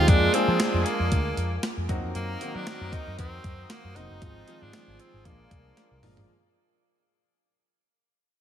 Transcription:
0.00 0.08 G#3 medium
0.00 0.10 C4 medium
0.00 0.10 D#4 medium
0.00 0.09 F4 medium
0.00 1.85 F4 medium
0.00 0.10 G4 medium
0.08 0.28 F2 loud
0.08 1.60 F3 medium
0.08 0.25 G#3 medium
0.08 1.60 G#3 medium
0.08 0.25 A#3 medium
0.08 1.60 D4 medium
0.08 0.25 D4 medium
0.08 0.35 D4 loud
0.08 0.26 F4 medium
0.08 1.60 G#4 loud
0.08 0.26 G#4 medium
0.08 1.87 A#4 medium
0.08 1.87 G#5 medium
0.08 1.87 D6 medium
0.08 kick loud
0.08 closed hi-hat medium
0.33 1.00 G#3 medium
0.33 1.00 A#3 medium
0.33 0.88 C4 loud
0.33 1.00 D4 medium
0.33 1.00 F4 medium
0.33 1.00 G#4 medium
0.33 closed hi-hat medium
0.48 0.57 F3 loud
0.60 snare loud
0.60 closed hi-hat loud
0.60 tambourine medium
0.74 0.83 F2 medium
0.86 1.64 A#3 medium
0.86 closed hi-hat medium
1.00 1.09 F2 medium
1.12 1.31 D2 loud
1.12 kick medium
1.12 closed hi-hat loud
1.37 1.57 F2 loud
1.37 closed hi-hat medium
1.63 snare loud
1.63 closed hi-hat loud
1.63 tambourine medium
1.77 1.86 F2 medium
1.89 2.00 F#2 loud
1.89 3.92 D#3 loud
1.89 2.31 F#3 loud
1.89 3.92 F#3 loud
1.89 2.31 A#3 medium
1.89 3.92 A#3 loud
1.89 2.32 C4 medium
1.89 2.32 D#4 medium
1.89 4.20 F#4 medium
1.89 2.32 F#4 loud
1.89 3.92 A#4 loud
1.89 5.22 C5 medium
1.89 4.19 A#5 medium
1.89 5.22 D#6 loud
1.89 kick loud
1.89 closed hi-hat medium
2.04 2.12 F2 medium
2.15 2.34 F#2 loud
2.15 2.57 A#3 loud
2.15 closed hi-hat loud
2.41 3.07 D#3 medium
2.41 3.07 F#3 medium
2.41 3.07 A#3 medium
2.41 3.07 C4 medium
2.41 3.07 F#4 medium
2.41 closed hi-hat medium
2.55 2.64 F#3 loud
2.55 2.95 D4 loud
2.67 snare loud
2.67 closed hi-hat loud
2.67 tambourine medium
2.81 2.90 F#2 medium
2.92 3.19 D#4 loud
2.92 kick loud
2.92 closed hi-hat medium
3.07 3.16 F#2 medium
3.19 3.38 F2 loud
3.19 3.72 C4 loud
3.19 kick medium
3.19 closed hi-hat loud
3.44 3.64 F#2 loud
3.44 kick loud
3.44 closed hi-hat medium
3.70 3.98 A#3 medium
3.70 snare loud
3.70 closed hi-hat loud
3.70 tambourine medium
3.84 3.93 F#2 medium
3.95 4.07 F1 loud
3.95 4.13 F#3 medium
3.95 4.13 A#3 medium
3.95 4.13 C4 medium
3.95 4.13 D#4 medium
3.95 4.64 D#4 loud
3.95 4.13 F#4 medium
3.95 closed hi-hat medium
4.10 4.19 F#1 loud
4.22 4.41 G#1 loud
4.22 4.39 F3 medium
4.22 4.98 G#3 medium
4.22 4.39 G#3 medium
4.22 4.98 C4 medium
4.22 4.39 C4 medium
4.22 4.39 D#4 medium
4.22 4.98 F4 medium
4.22 6.27 F4 medium
4.22 4.40 F4 medium
4.22 4.98 C5 medium
4.22 6.27 G#5 medium
4.22 kick loud
4.22 closed hi-hat medium
4.48 5.14 D#3 medium
4.48 5.14 F3 medium
4.48 5.14 G#3 medium
4.48 5.14 C4 medium
4.48 5.14 F4 medium
4.48 closed hi-hat medium
4.62 4.71 G#2 loud
4.62 5.01 D4 loud
4.73 snare loud
4.73 closed hi-hat loud
4.73 tambourine medium
4.88 4.96 G#1 medium
5.00 5.27 C4 loud
5.00 closed hi-hat medium
5.14 5.22 G#1 loud
5.25 5.45 A#1 loud
5.25 5.88 F3 medium
5.25 5.88 G#3 medium
5.25 6.01 A#3 medium
5.25 5.89 A#3 medium
5.25 6.03 A#3 medium
5.25 6.01 D4 medium
5.25 5.89 D4 medium
5.25 5.89 F4 medium
5.25 6.01 G#4 medium
5.25 6.28 A#4 medium
5.25 6.01 D5 medium
5.25 6.28 D6 medium
5.25 kick medium
5.25 closed hi-hat medium
5.51 5.71 C2 medium
5.51 kick loud
5.51 closed hi-hat medium
5.77 snare medium
5.77 closed hi-hat medium
5.91 6.00 C2 medium
6.03 6.14 G1 loud
6.03 6.20 F3 medium
6.03 6.20 G#3 medium
6.03 6.20 A#3 medium
6.03 6.20 D4 medium
6.03 6.20 F4 loud
6.03 mid tom loud
6.03 open hi-hat medium
6.17 6.26 G#1 medium
6.17 floor tom loud

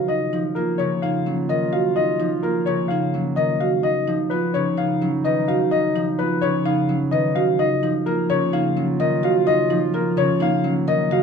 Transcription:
0.00 0.12 C#3 medium
0.00 0.12 D#3 medium
0.00 0.32 F3 medium
0.00 1.25 F#3 medium
0.00 0.12 B3 medium
0.00 0.17 F#4 medium
0.00 0.16 F5 medium
0.08 0.32 D#4 medium
0.08 3.57 F4 medium
0.08 0.40 D#5 medium
0.33 2.19 F3 medium
0.33 0.63 D#4 medium
0.55 1.02 A#3 medium
0.55 0.87 F4 medium
0.55 0.86 A#4 medium
0.78 2.66 C#3 medium
0.78 1.10 C#5 medium
1.02 2.42 A#3 medium
1.02 1.34 D#4 medium
1.02 1.33 F5 medium
1.26 3.13 F#3 medium
1.26 1.57 C#4 medium
1.49 3.36 D#3 medium
1.49 1.80 A#4 medium
1.49 1.80 D#5 medium
1.72 2.04 F#4 medium
1.72 2.04 F5 medium
1.96 2.18 D#4 medium
1.96 2.27 D#5 medium
2.20 3.86 F3 medium
2.20 2.51 D#4 medium
2.43 2.90 A#3 medium
2.43 2.74 F4 medium
2.43 2.74 A#4 medium
2.66 3.86 C#3 medium
2.66 2.97 C#5 medium
2.88 3.87 A#3 medium
2.88 3.21 D#4 medium
2.88 3.20 F5 medium
3.14 5.01 F#3 medium
3.14 3.45 C#4 medium
3.36 3.86 D#3 medium
3.36 3.68 A#4 medium
3.36 3.68 D#5 medium
3.60 3.91 F#4 medium
3.60 3.91 F5 medium
3.83 4.06 D#4 medium
3.83 7.32 D#4 medium
3.83 4.15 D#5 medium
4.07 5.95 F3 medium
4.07 4.38 D#4 medium
4.30 4.76 B3 medium
4.30 4.62 F4 medium
4.30 4.61 B4 medium
4.54 5.48 C#3 medium
4.54 4.85 C#4 medium
4.54 4.85 C#5 medium
4.78 6.18 B3 medium
4.78 5.09 D#4 medium
4.78 5.09 F5 medium
5.02 6.87 F#3 medium
5.02 5.32 C#4 medium
5.24 7.11 D#3 medium
5.24 5.56 B4 medium
5.24 5.55 D#5 medium
5.48 6.41 C#3 medium
5.48 5.79 F#4 medium
5.48 5.79 F5 medium
5.71 5.94 D#4 medium
5.71 6.02 D#5 medium
5.96 7.82 F3 medium
5.96 6.26 D#4 medium
6.19 6.64 B3 medium
6.19 6.49 F4 medium
6.19 6.49 B4 medium
6.41 7.34 C#3 medium
6.41 6.73 C#4 medium
6.41 6.73 C#5 medium
6.66 7.61 B3 medium
6.66 6.96 D#4 medium
6.66 6.96 F5 medium
6.89 8.75 F#3 medium
6.89 7.20 C#4 medium
7.11 7.61 D#3 medium
7.11 7.43 B4 medium
7.11 7.43 D#5 medium
7.35 7.61 C#3 medium
7.35 7.66 F#4 medium
7.35 7.66 F5 medium
7.59 7.82 D#4 medium
7.59 11.07 F4 medium
7.59 7.90 D#5 medium
7.83 9.69 F3 medium
7.83 8.13 D#4 medium
8.06 8.52 A#3 medium
8.06 8.37 F4 medium
8.06 8.37 A#4 medium
8.30 9.22 C#3 medium
8.30 8.60 C#4 medium
8.30 8.60 C#5 loud
8.53 9.92 A#3 medium
8.53 8.84 D#4 medium
8.53 8.84 F5 medium
8.77 10.63 F#3 medium
8.77 9.07 C#4 medium
9.00 10.86 D#3 medium
9.00 9.31 A#4 medium
9.00 9.31 D#5 medium
9.23 10.16 C#3 medium
9.23 9.54 F#4 loud
9.23 9.54 F5 medium
9.47 9.69 D#4 medium
9.47 9.77 D#5 medium
9.70 11.23 F3 medium
9.70 10.01 D#4 medium
9.94 10.39 A#3 medium
9.94 10.25 F4 medium
9.94 10.25 A#4 medium
10.17 11.10 C#3 loud
10.17 10.48 C#4 medium
10.17 10.48 C#5 medium
10.40 11.23 A#3 medium
10.40 10.71 D#4 medium
10.40 10.72 F5 medium
10.64 11.23 F#3 medium
10.64 10.95 C#4 medium
10.87 11.23 D#3 medium
10.87 11.18 A#4 medium
10.87 11.18 D#5 medium
11.11 11.23 C#3 medium
11.11 11.23 F#4 medium
11.11 11.23 F5 medium

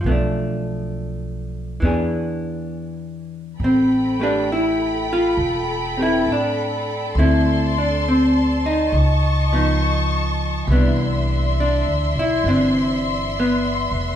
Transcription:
0.01 1.77 B1 medium
0.01 1.80 F3 soft
0.06 1.82 A3 medium
0.06 0.11 B3 medium
0.12 1.83 D4 medium
1.80 3.56 E2 medium
1.80 3.59 E3 medium
1.80 3.60 B3 medium
1.84 3.61 D4 medium
1.84 3.61 G#4 medium
3.60 5.34 A1 medium
3.60 8.88 A4 medium
3.60 7.12 G5 medium
3.60 7.12 B5 medium
3.64 4.16 C4 medium
4.20 7.16 A3 soft
4.20 4.23 C4 soft
4.20 4.52 D4 medium
4.20 5.98 G4 soft
4.20 6.00 B4 soft
4.52 5.05 E4 medium
5.13 5.95 F4 loud
5.37 6.22 E1 medium
5.97 7.16 C4 soft
5.97 6.02 G4 soft
5.97 7.18 B4 soft
6.02 6.30 E4 medium
6.26 7.11 A2 medium
6.32 7.14 D4 medium
7.15 8.88 D2 medium
7.15 8.94 A3 soft
7.15 8.07 C4 medium
7.15 8.91 D5 medium
7.15 10.65 A5 medium
7.15 8.91 C6 medium
7.19 7.77 E4 medium
7.78 8.07 D4 medium
8.08 8.66 C4 medium
8.66 9.53 D#4 medium
8.92 10.64 C#2 medium
8.92 10.67 D#5 medium
8.92 10.67 C#6 medium
9.52 10.69 F3 soft
9.52 10.70 B3 soft
9.52 10.70 D#4 soft
10.67 11.81 C2 medium
10.67 12.44 E3 soft
10.67 14.16 D5 medium
10.67 14.16 E5 medium
10.67 14.16 C6 medium
10.72 11.54 B3 medium
10.72 11.59 D4 soft
11.60 12.12 D4 medium
11.86 12.13 D2 medium
12.15 12.43 B1 medium
12.15 12.47 E4 medium
12.44 13.87 G1 medium
12.44 14.16 E3 soft
12.44 14.16 D4 soft
12.48 13.38 C4 medium
13.40 14.16 B3 medium
13.91 14.16 F1 medium

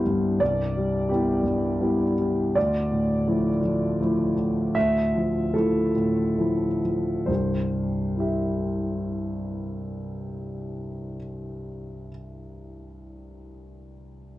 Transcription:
0.00 0.37 C2 soft
0.00 0.06 G2 soft
0.00 0.42 G3 soft
0.00 0.43 B3 soft
0.00 0.43 E4 soft
0.00 0.41 C5 medium
0.06 0.62 G2 soft
0.40 2.52 C2 soft
0.40 1.09 D5 medium
0.76 1.08 G3 soft
1.09 1.41 G3 soft
1.09 1.41 B3 soft
1.09 1.42 E4 soft
1.09 2.55 G4 soft
1.43 2.01 G2 soft
1.80 2.14 G3 soft
1.80 2.14 B3 soft
1.80 2.14 E4 soft
2.19 2.56 G3 soft
2.55 4.71 D2 soft
2.55 4.75 D5 medium
2.92 3.48 A2 soft
3.28 3.59 F3 soft
3.28 3.59 A3 soft
3.28 3.60 E4 soft
3.64 3.99 F3 soft
4.01 4.34 F3 soft
4.01 4.34 A3 soft
4.01 4.34 E4 soft
4.36 4.98 A2 soft
4.75 7.25 D2 soft
4.75 5.54 E5 medium
5.16 5.53 F3 soft
5.54 5.92 F3 soft
5.54 5.92 A3 soft
5.54 5.92 E4 soft
5.54 7.28 A4 medium
5.95 6.65 A2 soft
6.38 6.80 F3 soft
6.38 6.79 A3 soft
6.38 6.80 E4 soft
6.83 7.28 F3 soft
7.26 11.17 C2 soft
7.26 11.17 G2 soft
7.26 11.16 C5 soft
8.16 12.06 E4 soft
8.16 12.08 G4 soft
8.16 12.10 E5 soft

